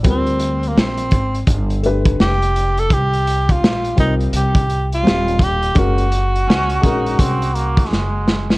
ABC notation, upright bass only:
X:1
M:4/4
L:1/16
Q:"Swing 16ths" 1/4=84
K:Cphr
V:1 name="Upright bass" clef=bass
=D,,4 B,,,2 A,,,2 G,,,4 F,,,4 | C,,4 B,,,2 C,,2 C,,4 E,,,4 | _G,,,4 D,,2 B,,,2 C,,3 z G,,,4 |]